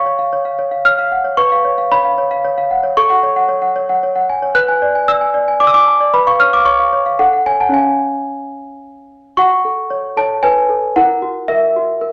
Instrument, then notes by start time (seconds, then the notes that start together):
celesta
Already playing: C#5 F5 C#6
0.06 C#5
0.19 F5
0.33 C#5
0.45 F5
0.59 C#5
0.71 F5
0.85 C#5 F6
0.99 F5
1.12 F#5
1.24 C#5
1.37 B4 C#6
1.52 F5
1.65 C#5
1.78 F5
1.92 C#5 B5
2.05 F5
2.18 C#5
2.31 F5
2.45 C#5
2.58 F5
2.71 F#5
2.83 C#5
2.97 A4 C#6
3.10 F#5
3.23 C#5
3.36 F#5
3.49 C#5
3.62 F#5
3.76 C#5
3.89 F#5
4.03 C#5
4.15 F#5
4.29 G#5
4.42 C#5
4.55 B4 F#6
4.68 G#5
4.82 D5
4.95 G#5
5.08 D5 E6
5.21 G#5
5.34 D5
5.48 G#5
5.60 D5 D6
5.67 E6
5.74 G#5 D6
5.87 A5
6.00 D5
6.14 B4 B5
6.27 F5 C#6
6.39 C#5 F6
6.53 F5 D6
6.65 C#5 C#6
6.80 F5
6.93 C#5
7.06 F5
7.19 A4 F#5
7.33 F#5
7.46 C#5 G#5
7.60 F#5 A5
7.69 C#4 C#5 F5
7.74 G#5
9.37 F#4 F#5 C#6
9.65 A4
9.90 C#5
10.17 A4 C#5 A5
10.43 B4 C#5 G#5
10.69 A4
10.96 E4 A#4 F#5
11.22 F#4
11.48 A#4 E5
11.76 F#4
12.01 A#4